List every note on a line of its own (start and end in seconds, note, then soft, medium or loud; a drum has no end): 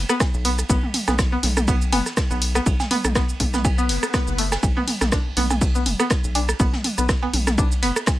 0.09 0.12 B3 loud
0.09 cross-stick medium
0.09 shaker soft
0.20 kick loud
0.20 cross-stick medium
0.20 snare loud
0.20 ride medium
0.20 cowbell medium
0.20 shaker medium
0.34 0.63 B1 loud
0.34 shaker soft
0.45 0.49 B3 loud
0.45 open hi-hat medium
0.45 ride medium
0.59 cross-stick soft
0.59 shaker soft
0.69 0.78 B1 loud
0.69 0.76 B3 loud
0.69 kick loud
0.69 ride medium
0.69 shaker medium
0.83 high tom medium
0.94 open hi-hat medium
0.94 mid tom medium
0.94 ride medium
1.07 1.37 B1 medium
1.07 1.15 B3 medium
1.07 cross-stick medium
1.07 snare soft
1.07 high tom medium
1.07 cowbell medium
1.07 shaker soft
1.19 kick loud
1.19 cross-stick medium
1.19 snare loud
1.19 ride medium
1.19 shaker medium
1.32 1.35 B3 loud
1.43 1.94 B1 loud
1.43 snare soft
1.43 open hi-hat medium
1.43 mid tom medium
1.43 ride medium
1.57 cross-stick medium
1.57 high tom medium
1.57 ride soft
1.57 shaker soft
1.68 1.71 B3 loud
1.68 kick loud
1.68 ride loud
1.68 shaker medium
1.81 shaker soft
1.92 2.01 F#1 loud
1.92 1.99 B3 loud
1.92 open hi-hat medium
1.92 high tom medium
1.92 ride medium
1.92 cowbell medium
2.06 cross-stick soft
2.06 snare soft
2.06 shaker soft
2.17 kick loud
2.17 cross-stick medium
2.17 snare loud
2.17 ride loud
2.17 shaker medium
2.31 2.60 B1 loud
2.31 2.38 B3 medium
2.31 shaker soft
2.42 open hi-hat medium
2.42 ride medium
2.55 2.58 B3 loud
2.55 cross-stick medium
2.55 shaker soft
2.66 2.75 B1 loud
2.66 kick loud
2.66 ride medium
2.66 shaker medium
2.80 snare medium
2.80 high tom medium
2.80 cowbell medium
2.80 shaker soft
2.91 2.94 B3 loud
2.91 open hi-hat medium
2.91 mid tom medium
2.91 ride medium
3.04 3.34 B1 medium
3.04 cross-stick medium
3.04 high tom medium
3.04 shaker soft
3.15 3.21 B3 loud
3.15 kick loud
3.15 cross-stick loud
3.15 snare loud
3.15 ride medium
3.15 shaker medium
3.29 shaker soft
3.40 3.91 B1 loud
3.40 kick medium
3.40 open hi-hat medium
3.40 mid tom medium
3.40 ride medium
3.54 3.61 B3 medium
3.54 cross-stick soft
3.54 snare soft
3.54 high tom medium
3.54 shaker soft
3.64 kick loud
3.64 ride loud
3.64 cowbell medium
3.64 swell medium
3.64 shaker medium
3.78 3.81 B3 loud
3.78 ride soft
3.78 shaker soft
3.89 3.98 F#1 loud
3.89 snare soft
3.89 open hi-hat medium
3.89 ride medium
4.03 cross-stick medium
4.03 shaker soft
4.13 4.17 B3 loud
4.13 kick loud
4.13 cross-stick medium
4.13 snare loud
4.13 ride medium
4.13 shaker medium
4.27 4.57 F#1 medium
4.27 shaker soft
4.38 4.44 A3 medium
4.38 open hi-hat loud
4.38 ride medium
4.52 cross-stick medium
4.52 snare loud
4.52 ride medium
4.52 cowbell medium
4.52 shaker soft
4.63 4.72 B1 loud
4.63 kick loud
4.63 ride medium
4.63 cowbell medium
4.63 shaker medium
4.77 4.80 B3 loud
4.77 high tom medium
4.88 open hi-hat medium
4.88 mid tom medium
4.88 ride medium
5.01 5.31 B1 medium
5.01 cross-stick medium
5.01 snare soft
5.01 high tom medium
5.01 shaker soft
5.11 5.16 D4 medium
5.11 kick loud
5.11 cross-stick loud
5.11 snare loud
5.11 ride medium
5.11 shaker medium
5.36 5.87 B1 medium
5.36 5.43 B3 loud
5.36 snare soft
5.36 open hi-hat medium
5.36 mid tom medium
5.36 ride medium
5.50 cross-stick soft
5.50 high tom medium
5.50 ride soft
5.50 cowbell medium
5.50 shaker soft
5.61 kick loud
5.61 ride medium
5.61 shaker medium
5.75 5.82 B3 medium
5.75 shaker soft
5.85 5.95 F#1 loud
5.85 open hi-hat medium
5.85 high tom medium
5.85 ride medium
6.00 6.03 B3 loud
6.00 cross-stick medium
6.00 shaker soft
6.10 kick loud
6.10 cross-stick medium
6.10 snare loud
6.10 ride medium
6.10 shaker medium
6.24 6.54 B1 loud
6.24 shaker soft
6.35 6.39 D4 medium
6.35 open hi-hat medium
6.35 ride medium
6.35 cowbell medium
6.49 cross-stick medium
6.49 shaker soft
6.60 6.69 B1 loud
6.60 6.66 B3 loud
6.60 kick loud
6.60 ride medium
6.60 shaker medium
6.73 snare medium
6.73 high tom medium
6.84 open hi-hat medium
6.84 mid tom medium
6.84 ride medium
6.98 7.27 B1 medium
6.98 7.05 B3 medium
6.98 cross-stick soft
6.98 shaker soft
7.09 kick loud
7.09 cross-stick loud
7.09 snare loud
7.09 ride medium
7.09 shaker medium
7.22 7.25 B3 loud
7.22 cowbell medium
7.33 7.84 B1 loud
7.33 open hi-hat medium
7.33 mid tom medium
7.33 ride medium
7.47 cross-stick medium
7.47 snare soft
7.47 high tom medium
7.47 shaker soft
7.57 7.62 D4 medium
7.57 kick loud
7.57 ride medium
7.57 shaker medium
7.72 ride soft
7.72 shaker soft
7.82 7.92 F#1 loud
7.82 7.89 B3 loud
7.82 snare soft
7.82 open hi-hat medium
7.82 ride medium
7.96 cross-stick medium
7.96 shaker soft
8.06 kick loud
8.06 cross-stick medium
8.06 snare loud
8.06 ride medium
8.06 cowbell medium
8.06 shaker medium